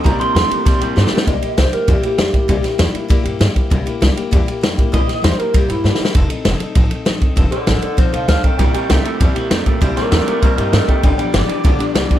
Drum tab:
RD |x--x--x--x--x--x--------|x--x--x--x--x--x--x--x--|x--x--x--x--x--x--x--x--|x--x--x--x--x--x--x--x--|
SD |------o-----o-----o-o-o-|------o-----------o-----|---o--o-----------o-----|------o-----------o-----|
BD |o-----------o-----------|o-----------o--------o--|o-----------o--------o--|o-----------o--------o--|

RD |x--x--x--x--x--x--------|x--x--x--x--x--x--x--x--|x--x--x--x--x--x--x--x--|x--x--x--x--x--x--x--x--|
SD |---o--o-----------o-o-o-|------o-----------o-----|------o-----------o-----|------o-----------o-----|
BD |o-----------o-----------|o-----------o--------o--|o-----------o--------o--|o-----------o--------o--|

RD |x--x--x--x--x--x--x--x--|x--x--x--x--x--x--x--x--|
SD |---o--o-----------o-----|------o-----------o-----|
BD |o-----------o--------o--|o-----------o--------o--|